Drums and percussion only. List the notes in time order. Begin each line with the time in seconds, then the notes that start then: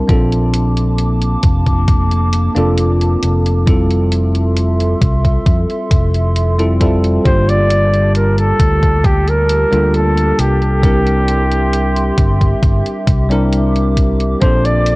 0.09 kick, closed hi-hat
0.32 closed hi-hat
0.54 closed hi-hat
0.77 closed hi-hat
0.98 closed hi-hat
1.22 closed hi-hat
1.43 kick, closed hi-hat
1.66 kick, closed hi-hat
1.88 kick, closed hi-hat
2.11 closed hi-hat
2.33 closed hi-hat
2.56 closed hi-hat
2.78 closed hi-hat
3.01 closed hi-hat
3.23 closed hi-hat
3.46 closed hi-hat
3.67 kick, closed hi-hat
3.90 closed hi-hat
4.12 closed hi-hat
4.35 closed hi-hat
4.57 closed hi-hat
4.80 closed hi-hat
5.02 kick, closed hi-hat
5.25 kick, closed hi-hat
5.46 kick, closed hi-hat
5.70 closed hi-hat
5.91 kick, closed hi-hat
6.14 closed hi-hat
6.36 closed hi-hat
6.59 closed hi-hat
6.81 kick, closed hi-hat
7.04 closed hi-hat
7.25 kick, closed hi-hat
7.49 closed hi-hat
7.70 closed hi-hat
7.93 closed hi-hat
8.15 closed hi-hat
8.38 closed hi-hat
8.60 kick, closed hi-hat
8.83 kick, closed hi-hat
9.04 kick, closed hi-hat
9.28 closed hi-hat
9.49 closed hi-hat
9.73 closed hi-hat
9.94 closed hi-hat
10.17 closed hi-hat
10.39 closed hi-hat
10.62 closed hi-hat
10.83 kick, closed hi-hat
11.07 closed hi-hat
11.28 closed hi-hat
11.52 closed hi-hat
11.73 closed hi-hat
11.96 closed hi-hat
12.18 kick, closed hi-hat
12.41 kick, closed hi-hat
12.63 kick, closed hi-hat
12.86 closed hi-hat
13.07 kick, closed hi-hat
13.31 closed hi-hat
13.52 closed hi-hat
13.76 closed hi-hat
13.97 kick, closed hi-hat
14.20 closed hi-hat
14.41 kick, closed hi-hat
14.65 closed hi-hat
14.86 closed hi-hat